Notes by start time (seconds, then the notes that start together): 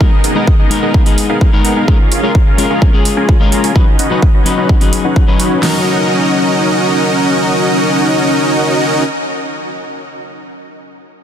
0.01 B3 D#4 G#4 A#4 D#5, kick
0.24 B3 D#4 G#4 A#4 D#5, open hi-hat
0.35 G#3 B3 D#4 G#4 A#4 D#5
0.47 kick
0.59 B3 D#4 G#4 A#4 D#5
0.70 G#3 B3 D#4 A#4, open hi-hat
0.83 B3 D#4 G#4 A#4 D#5
0.94 B3 D#4 G#4 A#4 F5, kick
1.05 G#3 B3 D#4 G#4, open hi-hat
1.18 open hi-hat
1.29 B3 D#4 G#4 A#4 F5
1.41 B3 D#4 G#4 A#4 F5, kick
1.52 G#3 B3 D#4 G#4 A#4 C#5
1.65 B3 D#4 G#4 A#4 F#5, open hi-hat
1.76 B3 D#4 G#4 A#4 F5
1.87 G#3 C#4 F4 G#4 A#4 F5, kick
2.12 C#4 F4 G#4 A#4 F5, open hi-hat
2.23 G#3 C#4 F4 G#4 A#4 F5
2.35 kick
2.47 C#4 F4 G#4 A#4 F5
2.58 G#3 C#4 F4 A#4, open hi-hat
2.70 C#4 F4 G#4 A#4 F5
2.82 C#4 F4 G#4 A#4 G#5, kick
2.93 G#3 C#4 F4 G#4
3.05 open hi-hat
3.17 C#4 F4 G#4 A#4 G#5
3.29 C#4 F4 G#4 A#4 G#5, kick
3.40 G#3 C#4 F4 G#4 A#4 D#5
3.52 C#4 F4 G#4 A#4 A#5, open hi-hat
3.64 C#4 F4 G#4 A#4 G#5, open hi-hat
3.75 F#3 C#4 D#4 F#4 B4 D#5, kick
3.99 C#4 D#4 F#4 B4 D#5, open hi-hat
4.10 F#3 C#4 D#4 F#4 B4 D#5
4.22 kick
4.34 C#4 D#4 F#4 B4 D#5
4.45 F#3 C#4 D#4 B4, open hi-hat
4.58 C#4 D#4 F#4 B4 D#5
4.69 C#4 D#4 F#4 B4 F#5, kick
4.80 F#3 C#4 D#4 G#4, open hi-hat
4.93 open hi-hat
5.05 C#4 D#4 F#4 B4 F#5
5.16 kick
5.27 F#3 C#4 D#4 F#4 B4 C#5
5.39 C#4 D#4 F#4 B4 C#5, open hi-hat
5.61 F#3 C#4 D#4 F#4 A#4 D#5, snare, open hi-hat